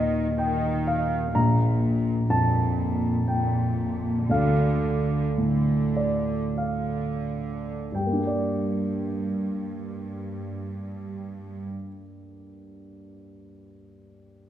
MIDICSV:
0, 0, Header, 1, 3, 480
1, 0, Start_track
1, 0, Key_signature, -2, "minor"
1, 0, Tempo, 958466
1, 675, Time_signature, 3, 2, 24, 8
1, 1638, Tempo, 1018676
1, 2118, Tempo, 1083032
1, 2598, Tempo, 1181102
1, 3078, Tempo, 1333333
1, 5937, End_track
2, 0, Start_track
2, 0, Title_t, "Grand piano"
2, 0, Program_c, 0, 0
2, 0, Control_c, 0, 64, 127
2, 0, Note_on_c, 0, 39, 35
2, 0, Note_on_c, 0, 46, 28
2, 0, Note_on_c, 0, 75, 46
2, 0, Note_on_c, 0, 77, 49
2, 173, Note_off_c, 0, 75, 0
2, 191, Note_on_c, 0, 79, 49
2, 414, Note_off_c, 0, 79, 0
2, 438, Note_off_c, 0, 77, 0
2, 438, Note_on_c, 0, 77, 50
2, 654, Note_off_c, 0, 39, 0
2, 662, Note_off_c, 0, 77, 0
2, 675, Note_off_c, 0, 46, 0
2, 675, Note_on_c, 0, 34, 38
2, 676, Note_on_c, 0, 82, 55
2, 683, Control_c, 0, 64, 0
2, 773, Control_c, 0, 64, 127
2, 1128, Note_off_c, 0, 82, 0
2, 1150, Note_on_c, 0, 41, 28
2, 1153, Note_on_c, 0, 81, 55
2, 1620, Note_off_c, 0, 81, 0
2, 1642, Note_on_c, 0, 79, 47
2, 2099, Note_off_c, 0, 34, 0
2, 2101, Note_off_c, 0, 79, 0
2, 2119, Note_off_c, 0, 41, 0
2, 2121, Note_on_c, 0, 38, 36
2, 2127, Control_c, 0, 64, 0
2, 2127, Note_on_c, 0, 77, 52
2, 2219, Control_c, 0, 64, 127
2, 2600, Note_on_c, 0, 45, 26
2, 2819, Note_off_c, 0, 77, 0
2, 2839, Note_on_c, 0, 74, 38
2, 3067, Note_off_c, 0, 74, 0
2, 3086, Note_on_c, 0, 77, 33
2, 3309, Note_off_c, 0, 77, 0
2, 3554, Note_off_c, 0, 38, 0
2, 3568, Note_off_c, 0, 45, 0
2, 3570, Note_on_c, 0, 43, 23
2, 3577, Control_c, 0, 64, 0
2, 3580, Note_on_c, 0, 79, 32
2, 3596, Note_on_c, 0, 55, 23
2, 3622, Note_on_c, 0, 58, 23
2, 3646, Note_on_c, 0, 62, 22
2, 3670, Note_on_c, 0, 67, 21
2, 3671, Control_c, 0, 64, 127
2, 3697, Note_on_c, 0, 74, 22
2, 4921, Note_off_c, 0, 43, 0
2, 4931, Note_off_c, 0, 79, 0
2, 4947, Note_off_c, 0, 55, 0
2, 4973, Note_off_c, 0, 58, 0
2, 4997, Note_off_c, 0, 62, 0
2, 5022, Note_off_c, 0, 67, 0
2, 5048, Note_off_c, 0, 74, 0
2, 5937, End_track
3, 0, Start_track
3, 0, Title_t, "Cello section"
3, 0, Program_c, 1, 48
3, 0, Note_on_c, 1, 51, 41
3, 134, Note_off_c, 1, 51, 0
3, 186, Note_on_c, 1, 51, 44
3, 616, Note_off_c, 1, 51, 0
3, 673, Note_on_c, 1, 46, 45
3, 1091, Note_off_c, 1, 46, 0
3, 1149, Note_on_c, 1, 46, 45
3, 1580, Note_off_c, 1, 46, 0
3, 1638, Note_on_c, 1, 46, 45
3, 2060, Note_off_c, 1, 46, 0
3, 2118, Note_on_c, 1, 50, 44
3, 2540, Note_off_c, 1, 50, 0
3, 2598, Note_on_c, 1, 50, 37
3, 3019, Note_off_c, 1, 50, 0
3, 3081, Note_on_c, 1, 50, 32
3, 3511, Note_off_c, 1, 50, 0
3, 3568, Note_on_c, 1, 43, 30
3, 4919, Note_off_c, 1, 43, 0
3, 5937, End_track
0, 0, End_of_file